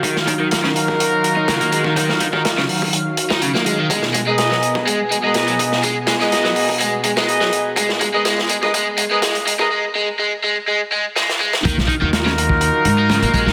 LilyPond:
<<
  \new Staff \with { instrumentName = "Horn section" } { \time 4/4 \key ees \minor \tempo 4 = 124 r8. <ees' f' ges' bes'>2.~ <ees' f' ges' bes'>16~ | <ees' f' ges' bes'>8. <ees' f' ges' bes'>16 r2. | r8. <aes' bes' ces'' ees''>4~ <aes' bes' ces'' ees''>16 r8. <aes' bes' ces'' ees''>4~ <aes' bes' ces'' ees''>16 | r8. <aes' bes' ces'' ees''>4~ <aes' bes' ces'' ees''>16 r8. <aes' bes' ces'' ees''>4~ <aes' bes' ces'' ees''>16 |
r8. <aes' bes' ces'' ees''>16 r8. <aes' bes' ces'' ees''>16 r8. <aes' bes' ces'' ees''>16 r8. <aes' bes' ces'' ees''>16 | r1 | r8. <ees' f' ges' bes'>2.~ <ees' f' ges' bes'>16 | }
  \new Staff \with { instrumentName = "Overdriven electric guitar" } { \clef bass \time 4/4 \key ees \minor ees16 r16 ees16 ees16 r16 des16 r4 r16 ees'16 des16 bes16 aes16 ees16 | ees16 r16 ees16 ees16 r16 des16 r4 r16 ees'16 des16 bes16 aes16 ees16 | aes16 r16 aes16 aes16 r16 ges16 r8 aes16 r16 aes16 aes16 r16 ges16 r8 | aes16 r16 aes16 aes16 r16 ges16 r8 aes16 r16 aes16 aes16 r16 ges16 r8 |
aes16 r16 aes16 aes16 aes16 r16 aes16 aes16 aes16 r16 aes16 aes16 aes16 r16 aes16 aes16 | aes16 r16 aes16 r16 aes16 r16 aes16 r16 aes16 r16 aes16 r16 aes16 r16 aes16 r16 | ees16 r16 ees16 ees16 r16 des16 r4 r16 ees'16 des16 bes16 aes16 ees16 | }
  \new Staff \with { instrumentName = "Analog synth pad" } { \clef bass \time 4/4 \key ees \minor << { <ees f''>1~ | <ees f''>1 | <ces aes'>1~ | <ces aes'>1~ |
<ces aes'>1 | r1 | <ees f''>1 | } \\ { ges1~ | ges1 | r1 | r1 |
aes1 | r1 | ges1 | } >> }
  \new Staff \with { instrumentName = "Upright bass" } { \clef bass \time 4/4 \key ees \minor r1 | r1 | r1 | r1 |
r1 | r1 | ees,16 bes,,16 r16 ees,4. r16 aes,8. bes,,16 bes,,16 ees,16 | }
  \new DrumStaff \with { instrumentName = "Drums" } \drummode { \time 4/4 <hh bd>16 sn16 <hh bd>8 <hh sn>16 sn16 hh16 bd16 hh8 hh8 <hh sn>16 hh16 hh16 bd16 | <hh bd>16 sn16 <hh bd>16 bd16 <hh sn>16 sn16 hho16 bd16 hh8 hh16 sn16 hh16 sn16 hh8 | <hh bd>16 sn16 <hh bd>8 <hh sn>16 sn16 hh16 bd16 hh8 hh8 <hh sn>16 hh16 <hh bd>16 sn16 | <hh bd>8 <hh sn>16 sn16 <hh sn>16 sn16 hho16 bd16 hh8 hh16 sn16 hh16 sn16 hh8 |
<hh bd>16 sn16 <hh bd>8 <hh sn>16 sn16 hh16 bd16 hh8 hh8 <hh sn>16 hh16 hh16 bd16 | r4 r4 r4 sn16 sn8 sn16 | <hh bd>16 sn16 <hh bd>8 <hh sn>16 sn16 hh16 bd16 hh8 hh8 <hh sn>16 hh16 <hh bd>16 sn16 | }
>>